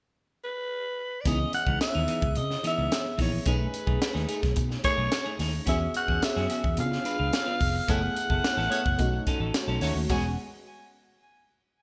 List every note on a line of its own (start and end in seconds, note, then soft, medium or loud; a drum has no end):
0.44 1.22 B4 loud
1.21 1.28 D5 medium
1.25 1.45 C#2 loud
1.25 1.45 E3 medium
1.25 3.42 B3 medium
1.25 1.39 B3 medium
1.25 3.43 C#4 medium
1.25 1.39 D#4 medium
1.25 3.43 E4 medium
1.25 3.43 G#4 medium
1.25 1.53 D#5 loud
1.25 kick loud
1.25 closed hi-hat medium
1.25 tambourine soft
1.40 muted clean electric guitar stroke soft
1.53 1.79 F#5 medium
1.53 muted clean electric guitar stroke soft
1.53 closed hi-hat medium
1.53 tambourine soft
1.66 1.77 C#2 medium
1.66 1.79 E3 medium
1.66 1.80 B3 medium
1.66 1.80 D#4 medium
1.66 kick medium
1.81 2.39 E5 loud
1.81 muted clean electric guitar stroke soft
1.81 snare loud
1.81 closed hi-hat medium
1.81 tambourine medium
1.94 2.05 D#2 medium
1.94 2.06 E3 medium
1.94 2.07 B3 medium
1.94 2.07 D#4 medium
2.07 2.23 E3 medium
2.07 2.22 B3 medium
2.07 2.21 D#4 medium
2.07 closed hi-hat medium
2.07 tambourine soft
2.22 2.38 C#2 medium
2.22 muted clean electric guitar stroke soft
2.22 kick medium
2.35 2.55 C#3 medium
2.35 2.64 D#5 medium
2.35 muted clean electric guitar stroke soft
2.35 closed hi-hat medium
2.50 muted clean electric guitar stroke soft
2.50 snare soft
2.63 2.77 E3 medium
2.63 2.76 B3 medium
2.63 2.76 D#4 medium
2.63 3.17 E5 loud
2.63 closed hi-hat medium
2.63 tambourine soft
2.77 2.88 C#2 medium
2.77 2.93 E3 soft
2.77 2.93 B3 medium
2.77 2.93 D#4 medium
2.92 snare loud
2.92 closed hi-hat medium
2.92 tambourine medium
3.05 muted clean electric guitar stroke soft
3.18 3.38 A#1 medium
3.18 3.38 E3 medium
3.18 3.32 B3 medium
3.18 3.31 D#4 medium
3.18 kick medium
3.18 open hi-hat medium
3.18 tambourine soft
3.22 3.46 C#5 medium
3.32 muted clean electric guitar stroke soft
3.45 3.65 B1 loud
3.45 5.63 A3 medium
3.45 3.66 A3 medium
3.45 5.63 C#4 medium
3.45 5.63 D#4 medium
3.45 3.60 D#4 medium
3.45 3.59 G#4 medium
3.45 5.64 G#4 medium
3.45 4.54 B4 medium
3.45 kick loud
3.45 closed hi-hat medium
3.45 tambourine soft
3.60 muted clean electric guitar stroke soft
3.73 muted clean electric guitar stroke soft
3.73 closed hi-hat medium
3.73 tambourine soft
3.87 3.97 B1 medium
3.87 3.99 A3 soft
3.87 4.00 D#4 medium
3.87 4.00 G#4 medium
3.87 kick medium
4.01 muted clean electric guitar stroke soft
4.01 snare loud
4.01 closed hi-hat medium
4.01 tambourine medium
4.14 4.25 D#2 medium
4.14 4.26 A3 medium
4.14 4.27 D#4 medium
4.14 4.28 G#4 medium
4.14 snare soft
4.28 4.44 A3 medium
4.28 4.41 D#4 medium
4.28 4.41 G#4 medium
4.28 closed hi-hat medium
4.28 tambourine soft
4.42 4.53 B1 medium
4.42 muted clean electric guitar stroke soft
4.42 kick loud
4.42 snare soft
4.56 4.76 B2 medium
4.56 muted clean electric guitar stroke soft
4.56 kick medium
4.56 closed hi-hat medium
4.56 tambourine soft
4.69 muted clean electric guitar stroke medium
4.69 snare soft
4.84 4.97 A3 medium
4.84 4.96 D#4 medium
4.84 4.95 G#4 medium
4.84 5.36 C#5 loud
4.84 kick medium
4.84 closed hi-hat medium
4.84 tambourine soft
4.97 5.08 B1 medium
4.97 5.10 A3 medium
4.97 5.11 D#4 medium
4.97 5.11 G#4 medium
5.11 muted clean electric guitar stroke soft
5.11 snare loud
5.11 closed hi-hat medium
5.11 tambourine medium
5.24 5.38 A3 medium
5.24 5.39 D#4 medium
5.24 5.39 G#4 medium
5.39 5.59 D#2 medium
5.39 5.55 A3 medium
5.39 5.53 D#4 medium
5.39 5.52 G#4 medium
5.39 snare soft
5.39 open hi-hat medium
5.39 tambourine soft
5.53 muted clean electric guitar stroke soft
5.66 5.86 E2 loud
5.66 6.75 B3 medium
5.66 5.86 C#4 medium
5.66 6.76 C#4 medium
5.66 5.81 F#4 medium
5.66 6.76 F#4 medium
5.66 5.79 G#4 medium
5.66 6.77 G#4 medium
5.66 5.94 E5 loud
5.66 kick loud
5.66 closed hi-hat medium
5.66 tambourine soft
5.81 muted clean electric guitar stroke soft
5.94 6.25 F#5 loud
5.94 muted clean electric guitar stroke soft
5.94 closed hi-hat medium
6.08 6.18 E2 loud
6.08 6.22 C#4 soft
6.08 6.22 F#4 soft
6.08 6.23 G#4 medium
6.08 kick medium
6.22 6.79 E5 loud
6.22 muted clean electric guitar stroke soft
6.22 snare loud
6.22 closed hi-hat medium
6.22 tambourine medium
6.36 6.46 F#2 medium
6.36 6.48 C#4 medium
6.36 6.49 F#4 medium
6.36 6.50 G#4 medium
6.36 snare soft
6.49 6.65 C#4 medium
6.49 6.63 F#4 medium
6.49 6.62 G#4 medium
6.49 closed hi-hat medium
6.49 tambourine soft
6.63 6.79 E2 medium
6.63 muted clean electric guitar stroke soft
6.63 kick medium
6.77 6.97 C#3 medium
6.77 7.86 B3 medium
6.77 7.87 D4 medium
6.77 7.87 F4 medium
6.77 7.87 G#4 medium
6.77 7.92 F5 loud
6.77 muted clean electric guitar stroke soft
6.77 closed hi-hat medium
6.91 muted clean electric guitar stroke soft
6.91 snare soft
7.04 7.18 D4 medium
7.04 7.18 F4 medium
7.04 7.17 B4 medium
7.04 closed hi-hat medium
7.04 tambourine soft
7.18 7.29 C#2 medium
7.18 7.32 D4 medium
7.18 7.32 F4 medium
7.18 7.33 B4 medium
7.33 muted clean electric guitar stroke soft
7.33 snare loud
7.33 closed hi-hat loud
7.33 tambourine medium
7.46 7.59 D4 medium
7.46 7.60 F4 medium
7.46 7.61 B4 medium
7.60 7.80 F1 medium
7.60 muted clean electric guitar stroke soft
7.60 kick medium
7.60 open hi-hat medium
7.60 tambourine soft
7.75 muted clean electric guitar stroke soft
7.87 8.07 F#1 loud
7.87 7.99 A3 medium
7.87 8.96 A3 medium
7.87 8.08 B3 medium
7.87 8.97 B3 medium
7.87 8.02 E4 medium
7.87 8.97 E4 medium
7.87 7.99 G#4 medium
7.87 8.98 G#4 medium
7.87 8.01 A4 loud
7.87 8.00 C#5 medium
7.87 9.55 F#5 loud
7.87 kick loud
7.87 closed hi-hat medium
7.87 tambourine medium
8.03 muted clean electric guitar stroke soft
8.16 muted clean electric guitar stroke soft
8.16 closed hi-hat medium
8.16 tambourine soft
8.30 8.39 F#1 medium
8.30 8.43 B3 soft
8.30 8.44 E4 medium
8.30 8.44 A4 medium
8.30 kick medium
8.44 muted clean electric guitar stroke soft
8.44 snare loud
8.44 closed hi-hat medium
8.44 tambourine medium
8.57 8.67 A1 medium
8.57 8.70 B3 medium
8.57 8.71 E4 medium
8.57 8.72 A4 medium
8.57 snare soft
8.70 8.79 A3 medium
8.70 8.87 B3 medium
8.70 8.85 E4 medium
8.70 8.79 G#4 medium
8.70 8.84 A4 medium
8.70 8.79 C#5 loud
8.70 closed hi-hat medium
8.70 tambourine soft
8.85 8.95 F#1 medium
8.85 muted clean electric guitar stroke soft
8.85 kick loud
8.98 9.18 B1 loud
8.98 10.07 A3 medium
8.98 10.07 C#4 medium
8.98 10.07 D#4 medium
8.98 10.08 F#4 medium
8.98 muted clean electric guitar stroke soft
8.98 kick medium
8.98 closed hi-hat medium
8.98 tambourine soft
9.13 muted clean electric guitar stroke soft
9.27 9.41 C#4 medium
9.27 9.40 D#4 medium
9.27 9.39 A4 medium
9.27 kick medium
9.27 closed hi-hat medium
9.27 tambourine soft
9.40 9.50 A1 medium
9.40 9.53 C#4 medium
9.40 9.53 D#4 medium
9.40 9.54 A4 medium
9.54 muted clean electric guitar stroke soft
9.54 snare loud
9.54 closed hi-hat loud
9.54 tambourine medium
9.68 9.77 B1 medium
9.68 9.81 C#4 medium
9.68 9.81 D#4 medium
9.68 9.82 A4 medium
9.80 9.91 D#2 medium
9.80 9.99 A3 medium
9.80 9.97 C#4 medium
9.80 9.96 D#4 medium
9.80 9.99 F#4 loud
9.80 9.95 A4 medium
9.80 9.98 C#5 loud
9.80 snare soft
9.80 open hi-hat medium
9.80 tambourine soft
9.95 10.05 D#2 medium
9.95 muted clean electric guitar stroke soft
10.08 10.35 E1 medium
10.08 10.28 G#3 medium
10.08 10.35 G#3 medium
10.08 10.35 B3 medium
10.08 10.35 C#4 medium
10.08 10.26 C#4 medium
10.08 10.28 F#4 medium
10.08 10.35 F#4 loud
10.08 10.27 F#4 medium
10.08 10.27 G#4 medium
10.08 10.28 C#5 medium
10.08 10.36 G#5 medium
10.08 kick loud
10.08 crash medium
10.08 tambourine medium